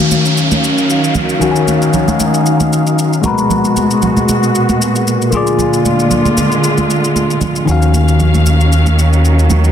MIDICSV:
0, 0, Header, 1, 6, 480
1, 0, Start_track
1, 0, Key_signature, -6, "minor"
1, 0, Tempo, 521739
1, 1305, Time_signature, 4, 2, 24, 8
1, 8941, End_track
2, 0, Start_track
2, 0, Title_t, "Tine electric piano"
2, 0, Program_c, 0, 4
2, 0, Control_c, 0, 64, 127
2, 0, Note_on_c, 0, 51, 72
2, 0, Note_on_c, 0, 61, 66
2, 0, Note_on_c, 0, 66, 65
2, 0, Note_on_c, 0, 77, 76
2, 1254, Note_off_c, 0, 51, 0
2, 1264, Note_off_c, 0, 61, 0
2, 1273, Note_off_c, 0, 66, 0
2, 1279, Note_on_c, 0, 51, 71
2, 1282, Note_off_c, 0, 77, 0
2, 1297, Note_on_c, 0, 61, 65
2, 1316, Note_on_c, 0, 66, 65
2, 1335, Note_on_c, 0, 78, 66
2, 1383, Note_off_c, 0, 78, 0
2, 1393, Note_on_c, 0, 80, 78
2, 2938, Note_off_c, 0, 51, 0
2, 2947, Note_off_c, 0, 61, 0
2, 2957, Note_off_c, 0, 66, 0
2, 2959, Note_on_c, 0, 56, 75
2, 2978, Note_on_c, 0, 66, 68
2, 2995, Control_c, 0, 64, 0
2, 2996, Note_off_c, 0, 80, 0
2, 2996, Note_on_c, 0, 70, 70
2, 3015, Note_on_c, 0, 71, 84
2, 3165, Control_c, 0, 64, 127
2, 4855, Note_off_c, 0, 56, 0
2, 4864, Note_off_c, 0, 66, 0
2, 4873, Note_off_c, 0, 70, 0
2, 4882, Note_on_c, 0, 58, 76
2, 4883, Note_off_c, 0, 71, 0
2, 4901, Note_on_c, 0, 65, 69
2, 4918, Control_c, 0, 64, 0
2, 4920, Note_on_c, 0, 68, 69
2, 4937, Note_on_c, 0, 74, 84
2, 5079, Control_c, 0, 64, 127
2, 6776, Note_off_c, 0, 58, 0
2, 6786, Note_off_c, 0, 65, 0
2, 6795, Note_off_c, 0, 68, 0
2, 6804, Note_off_c, 0, 74, 0
2, 7041, Note_on_c, 0, 51, 71
2, 7059, Note_on_c, 0, 61, 67
2, 7075, Control_c, 0, 64, 0
2, 7078, Note_on_c, 0, 66, 63
2, 7097, Note_on_c, 0, 77, 77
2, 7261, Control_c, 0, 64, 127
2, 8936, Note_off_c, 0, 51, 0
2, 8941, Note_off_c, 0, 61, 0
2, 8941, Note_off_c, 0, 66, 0
2, 8941, Note_off_c, 0, 77, 0
2, 8941, End_track
3, 0, Start_track
3, 0, Title_t, "String section"
3, 0, Program_c, 1, 48
3, 0, Note_on_c, 1, 51, 73
3, 0, Note_on_c, 1, 54, 65
3, 0, Note_on_c, 1, 61, 70
3, 0, Note_on_c, 1, 77, 85
3, 1285, Note_off_c, 1, 61, 0
3, 1303, Note_on_c, 1, 63, 66
3, 2949, Note_off_c, 1, 77, 0
3, 2950, Note_off_c, 1, 51, 0
3, 2950, Note_off_c, 1, 54, 0
3, 2967, Note_off_c, 1, 63, 0
3, 2986, Note_on_c, 1, 66, 85
3, 2987, Note_on_c, 1, 46, 68
3, 2987, Note_on_c, 1, 56, 72
3, 2988, Note_on_c, 1, 47, 79
3, 4886, Note_off_c, 1, 66, 0
3, 4887, Note_off_c, 1, 47, 0
3, 4887, Note_off_c, 1, 56, 0
3, 4904, Note_on_c, 1, 50, 79
3, 4905, Note_on_c, 1, 56, 72
3, 4905, Note_on_c, 1, 65, 89
3, 7029, Note_off_c, 1, 46, 0
3, 7043, Note_off_c, 1, 50, 0
3, 7043, Note_off_c, 1, 56, 0
3, 7043, Note_off_c, 1, 65, 0
3, 7060, Note_on_c, 1, 51, 76
3, 7060, Note_on_c, 1, 61, 68
3, 7063, Note_on_c, 1, 54, 72
3, 7063, Note_on_c, 1, 77, 80
3, 8941, Note_off_c, 1, 51, 0
3, 8941, Note_off_c, 1, 54, 0
3, 8941, Note_off_c, 1, 61, 0
3, 8941, Note_off_c, 1, 77, 0
3, 8941, End_track
4, 0, Start_track
4, 0, Title_t, "Sub bass"
4, 0, Program_c, 2, 38
4, 7066, Note_on_c, 2, 39, 84
4, 8941, Note_off_c, 2, 39, 0
4, 8941, End_track
5, 0, Start_track
5, 0, Title_t, "Downlifter"
5, 0, Program_c, 3, 103
5, 0, Note_on_c, 3, 60, 79
5, 3224, Note_off_c, 3, 60, 0
5, 8941, End_track
6, 0, Start_track
6, 0, Title_t, "Drums"
6, 103, Note_on_c, 9, 82, 104
6, 105, Note_on_c, 9, 63, 64
6, 195, Note_off_c, 9, 82, 0
6, 197, Note_off_c, 9, 63, 0
6, 234, Note_on_c, 9, 82, 52
6, 326, Note_off_c, 9, 82, 0
6, 345, Note_on_c, 9, 82, 81
6, 437, Note_off_c, 9, 82, 0
6, 473, Note_on_c, 9, 82, 54
6, 475, Note_on_c, 9, 63, 73
6, 565, Note_off_c, 9, 82, 0
6, 567, Note_off_c, 9, 63, 0
6, 590, Note_on_c, 9, 82, 73
6, 682, Note_off_c, 9, 82, 0
6, 718, Note_on_c, 9, 82, 50
6, 810, Note_off_c, 9, 82, 0
6, 828, Note_on_c, 9, 82, 81
6, 920, Note_off_c, 9, 82, 0
6, 959, Note_on_c, 9, 82, 45
6, 1051, Note_off_c, 9, 82, 0
6, 1057, Note_on_c, 9, 82, 79
6, 1058, Note_on_c, 9, 63, 73
6, 1058, Note_on_c, 9, 64, 72
6, 1149, Note_off_c, 9, 82, 0
6, 1150, Note_off_c, 9, 63, 0
6, 1150, Note_off_c, 9, 64, 0
6, 1190, Note_on_c, 9, 82, 50
6, 1282, Note_off_c, 9, 82, 0
6, 1297, Note_on_c, 9, 64, 67
6, 1304, Note_on_c, 9, 82, 73
6, 1389, Note_off_c, 9, 64, 0
6, 1396, Note_off_c, 9, 82, 0
6, 1434, Note_on_c, 9, 82, 52
6, 1526, Note_off_c, 9, 82, 0
6, 1542, Note_on_c, 9, 63, 62
6, 1545, Note_on_c, 9, 82, 80
6, 1634, Note_off_c, 9, 63, 0
6, 1637, Note_off_c, 9, 82, 0
6, 1675, Note_on_c, 9, 82, 55
6, 1767, Note_off_c, 9, 82, 0
6, 1780, Note_on_c, 9, 82, 62
6, 1781, Note_on_c, 9, 64, 67
6, 1872, Note_off_c, 9, 82, 0
6, 1873, Note_off_c, 9, 64, 0
6, 1912, Note_on_c, 9, 63, 80
6, 1914, Note_on_c, 9, 82, 48
6, 2004, Note_off_c, 9, 63, 0
6, 2006, Note_off_c, 9, 82, 0
6, 2023, Note_on_c, 9, 82, 100
6, 2027, Note_on_c, 9, 63, 67
6, 2115, Note_off_c, 9, 82, 0
6, 2119, Note_off_c, 9, 63, 0
6, 2155, Note_on_c, 9, 82, 49
6, 2247, Note_off_c, 9, 82, 0
6, 2264, Note_on_c, 9, 82, 81
6, 2356, Note_off_c, 9, 82, 0
6, 2394, Note_on_c, 9, 82, 52
6, 2396, Note_on_c, 9, 63, 76
6, 2486, Note_off_c, 9, 82, 0
6, 2488, Note_off_c, 9, 63, 0
6, 2511, Note_on_c, 9, 82, 74
6, 2603, Note_off_c, 9, 82, 0
6, 2638, Note_on_c, 9, 82, 52
6, 2730, Note_off_c, 9, 82, 0
6, 2748, Note_on_c, 9, 82, 78
6, 2840, Note_off_c, 9, 82, 0
6, 2880, Note_on_c, 9, 82, 45
6, 2972, Note_off_c, 9, 82, 0
6, 2978, Note_on_c, 9, 82, 78
6, 2979, Note_on_c, 9, 63, 75
6, 2979, Note_on_c, 9, 64, 75
6, 3070, Note_off_c, 9, 82, 0
6, 3071, Note_off_c, 9, 63, 0
6, 3071, Note_off_c, 9, 64, 0
6, 3110, Note_on_c, 9, 82, 52
6, 3202, Note_off_c, 9, 82, 0
6, 3220, Note_on_c, 9, 64, 69
6, 3226, Note_on_c, 9, 82, 73
6, 3312, Note_off_c, 9, 64, 0
6, 3318, Note_off_c, 9, 82, 0
6, 3355, Note_on_c, 9, 82, 52
6, 3447, Note_off_c, 9, 82, 0
6, 3465, Note_on_c, 9, 63, 60
6, 3465, Note_on_c, 9, 82, 78
6, 3557, Note_off_c, 9, 63, 0
6, 3557, Note_off_c, 9, 82, 0
6, 3595, Note_on_c, 9, 82, 53
6, 3687, Note_off_c, 9, 82, 0
6, 3700, Note_on_c, 9, 82, 64
6, 3704, Note_on_c, 9, 64, 67
6, 3792, Note_off_c, 9, 82, 0
6, 3796, Note_off_c, 9, 64, 0
6, 3835, Note_on_c, 9, 63, 78
6, 3836, Note_on_c, 9, 82, 48
6, 3927, Note_off_c, 9, 63, 0
6, 3928, Note_off_c, 9, 82, 0
6, 3944, Note_on_c, 9, 82, 103
6, 3947, Note_on_c, 9, 63, 64
6, 4036, Note_off_c, 9, 82, 0
6, 4039, Note_off_c, 9, 63, 0
6, 4077, Note_on_c, 9, 82, 51
6, 4169, Note_off_c, 9, 82, 0
6, 4188, Note_on_c, 9, 82, 77
6, 4280, Note_off_c, 9, 82, 0
6, 4316, Note_on_c, 9, 82, 53
6, 4318, Note_on_c, 9, 63, 76
6, 4408, Note_off_c, 9, 82, 0
6, 4410, Note_off_c, 9, 63, 0
6, 4432, Note_on_c, 9, 82, 80
6, 4524, Note_off_c, 9, 82, 0
6, 4560, Note_on_c, 9, 82, 50
6, 4652, Note_off_c, 9, 82, 0
6, 4669, Note_on_c, 9, 82, 78
6, 4761, Note_off_c, 9, 82, 0
6, 4801, Note_on_c, 9, 82, 44
6, 4893, Note_off_c, 9, 82, 0
6, 4898, Note_on_c, 9, 82, 77
6, 4899, Note_on_c, 9, 63, 73
6, 4899, Note_on_c, 9, 64, 71
6, 4990, Note_off_c, 9, 82, 0
6, 4991, Note_off_c, 9, 63, 0
6, 4991, Note_off_c, 9, 64, 0
6, 5032, Note_on_c, 9, 82, 53
6, 5124, Note_off_c, 9, 82, 0
6, 5139, Note_on_c, 9, 64, 66
6, 5146, Note_on_c, 9, 82, 75
6, 5231, Note_off_c, 9, 64, 0
6, 5238, Note_off_c, 9, 82, 0
6, 5276, Note_on_c, 9, 82, 51
6, 5368, Note_off_c, 9, 82, 0
6, 5383, Note_on_c, 9, 63, 63
6, 5386, Note_on_c, 9, 82, 83
6, 5475, Note_off_c, 9, 63, 0
6, 5478, Note_off_c, 9, 82, 0
6, 5516, Note_on_c, 9, 82, 53
6, 5608, Note_off_c, 9, 82, 0
6, 5621, Note_on_c, 9, 82, 67
6, 5622, Note_on_c, 9, 64, 69
6, 5713, Note_off_c, 9, 82, 0
6, 5714, Note_off_c, 9, 64, 0
6, 5753, Note_on_c, 9, 63, 77
6, 5756, Note_on_c, 9, 82, 50
6, 5845, Note_off_c, 9, 63, 0
6, 5848, Note_off_c, 9, 82, 0
6, 5865, Note_on_c, 9, 82, 107
6, 5866, Note_on_c, 9, 63, 65
6, 5957, Note_off_c, 9, 82, 0
6, 5958, Note_off_c, 9, 63, 0
6, 5997, Note_on_c, 9, 82, 50
6, 6089, Note_off_c, 9, 82, 0
6, 6107, Note_on_c, 9, 82, 78
6, 6199, Note_off_c, 9, 82, 0
6, 6235, Note_on_c, 9, 82, 57
6, 6237, Note_on_c, 9, 63, 73
6, 6327, Note_off_c, 9, 82, 0
6, 6329, Note_off_c, 9, 63, 0
6, 6352, Note_on_c, 9, 82, 74
6, 6444, Note_off_c, 9, 82, 0
6, 6481, Note_on_c, 9, 82, 49
6, 6573, Note_off_c, 9, 82, 0
6, 6585, Note_on_c, 9, 63, 56
6, 6589, Note_on_c, 9, 82, 77
6, 6677, Note_off_c, 9, 63, 0
6, 6681, Note_off_c, 9, 82, 0
6, 6722, Note_on_c, 9, 82, 45
6, 6814, Note_off_c, 9, 82, 0
6, 6819, Note_on_c, 9, 63, 76
6, 6819, Note_on_c, 9, 64, 72
6, 6820, Note_on_c, 9, 82, 78
6, 6911, Note_off_c, 9, 63, 0
6, 6911, Note_off_c, 9, 64, 0
6, 6912, Note_off_c, 9, 82, 0
6, 6953, Note_on_c, 9, 82, 54
6, 7045, Note_off_c, 9, 82, 0
6, 7060, Note_on_c, 9, 64, 68
6, 7068, Note_on_c, 9, 82, 71
6, 7152, Note_off_c, 9, 64, 0
6, 7160, Note_off_c, 9, 82, 0
6, 7197, Note_on_c, 9, 82, 54
6, 7289, Note_off_c, 9, 82, 0
6, 7303, Note_on_c, 9, 63, 65
6, 7307, Note_on_c, 9, 82, 77
6, 7395, Note_off_c, 9, 63, 0
6, 7399, Note_off_c, 9, 82, 0
6, 7437, Note_on_c, 9, 82, 54
6, 7529, Note_off_c, 9, 82, 0
6, 7541, Note_on_c, 9, 82, 63
6, 7542, Note_on_c, 9, 64, 68
6, 7633, Note_off_c, 9, 82, 0
6, 7634, Note_off_c, 9, 64, 0
6, 7674, Note_on_c, 9, 63, 77
6, 7677, Note_on_c, 9, 82, 48
6, 7766, Note_off_c, 9, 63, 0
6, 7769, Note_off_c, 9, 82, 0
6, 7785, Note_on_c, 9, 82, 102
6, 7788, Note_on_c, 9, 63, 67
6, 7877, Note_off_c, 9, 82, 0
6, 7880, Note_off_c, 9, 63, 0
6, 7918, Note_on_c, 9, 82, 50
6, 8010, Note_off_c, 9, 82, 0
6, 8027, Note_on_c, 9, 82, 83
6, 8119, Note_off_c, 9, 82, 0
6, 8154, Note_on_c, 9, 82, 55
6, 8158, Note_on_c, 9, 63, 73
6, 8246, Note_off_c, 9, 82, 0
6, 8250, Note_off_c, 9, 63, 0
6, 8271, Note_on_c, 9, 82, 75
6, 8363, Note_off_c, 9, 82, 0
6, 8401, Note_on_c, 9, 82, 50
6, 8493, Note_off_c, 9, 82, 0
6, 8509, Note_on_c, 9, 82, 77
6, 8601, Note_off_c, 9, 82, 0
6, 8641, Note_on_c, 9, 82, 43
6, 8733, Note_off_c, 9, 82, 0
6, 8739, Note_on_c, 9, 82, 81
6, 8740, Note_on_c, 9, 63, 70
6, 8740, Note_on_c, 9, 64, 72
6, 8831, Note_off_c, 9, 82, 0
6, 8832, Note_off_c, 9, 63, 0
6, 8832, Note_off_c, 9, 64, 0
6, 8872, Note_on_c, 9, 82, 50
6, 8941, Note_off_c, 9, 82, 0
6, 8941, End_track
0, 0, End_of_file